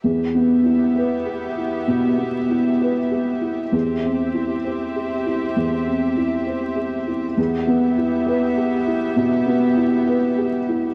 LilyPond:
<<
  \new Staff \with { instrumentName = "String section" } { \time 4/4 \key e \minor \tempo 4 = 66 <b g' e''>1 | <c' g' e''>1 | <b g' e''>1 | }
  \new Staff \with { instrumentName = "Felt piano" } { \time 4/4 \key e \minor \tuplet 3/2 { e,8 b8 e'8 b'8 g'8 e'8 b,8 b8 e'8 b'8 g'8 e'8 } | \tuplet 3/2 { e,8 c'8 e'8 c''8 g'8 e'8 e,8 c'8 e'8 c''8 g'8 e'8 } | \tuplet 3/2 { e,8 b8 e'8 b'8 g'8 e'8 b,8 b8 e'8 b'8 g'8 e'8 } | }
>>